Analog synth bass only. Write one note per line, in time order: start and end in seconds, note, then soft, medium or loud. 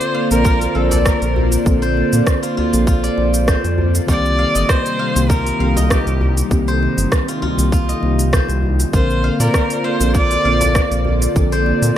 0.31 0.67 A#1 medium
0.75 1.12 A#1 medium
1.22 1.58 A#1 loud
1.66 2.03 A#1 medium
2.13 2.22 A#2 loud
2.74 3.10 A#1 medium
3.18 3.55 A#1 medium
3.65 4.00 F2 medium
4.08 4.45 C2 medium
4.55 4.64 G1 medium
5.16 5.52 C2 medium
5.60 5.97 C2 medium
6.07 6.43 C2 loud
6.51 6.88 C2 loud
6.98 7.06 G1 medium
7.58 7.94 C2 medium
8.03 8.40 C2 medium
8.49 8.85 C2 loud
8.93 9.30 A#1 loud
9.40 9.49 A#2 medium
10.00 10.37 A#1 medium
10.45 10.82 A#1 medium
10.91 11.27 A#1 medium
11.36 11.73 A#1 loud
11.82 11.91 A#2 medium